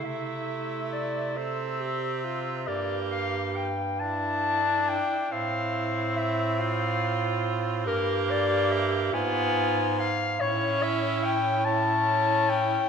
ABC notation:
X:1
M:6/8
L:1/8
Q:3/8=47
K:Aphr
V:1 name="Clarinet"
e2 d e3 | d f g a2 g | f2 e f2 z | B d e ^g2 ^e |
^c e g a2 g |]
V:2 name="Alto saxophone"
E3 A G F | G2 z E3 | E3 F3 | G3 ^E2 z |
E3 E3 |]
V:3 name="Tenor saxophone"
A,3 C3 | B,2 z D3 | C6 | B,3 =B,2 z |
^C3 C3 |]
V:4 name="Bass clarinet" clef=bass
C,6 | G,,4- G,, z | A,,6 | G,,3 ^G,,3 |
A,,6 |]